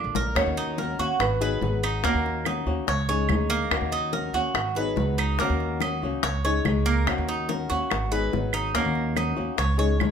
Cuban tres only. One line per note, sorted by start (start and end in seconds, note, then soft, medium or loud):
0.00 0.14 D4 medium
0.16 0.36 A#4 medium
0.57 0.78 D#4 medium
0.78 0.99 A#4 medium
0.99 1.40 F#4 medium
1.42 1.82 B4 medium
1.83 2.04 D#4 medium
2.04 2.45 A#3 medium
2.46 2.87 D#4 medium
2.88 3.08 C#5 medium
3.09 3.50 C#5 medium
3.50 3.91 A#3 loud
3.92 4.13 D#4 medium
4.13 4.34 A#4 medium
4.34 4.75 F#4 medium
4.76 5.17 B4 medium
5.18 5.39 D#4 medium
5.40 5.80 A#3 medium
5.82 6.22 D#4 medium
6.23 6.43 C#5 medium
6.45 6.85 C#5 medium
6.86 7.27 A#3 medium
7.29 7.49 D#4 medium
7.49 7.69 A#4 medium
7.70 8.11 F#4 medium
8.12 8.52 B4 medium
8.54 8.74 D#4 medium
8.75 9.16 A#3 medium
9.17 9.58 D#4 medium
9.59 9.78 C#5 medium
9.79 10.11 C#5 medium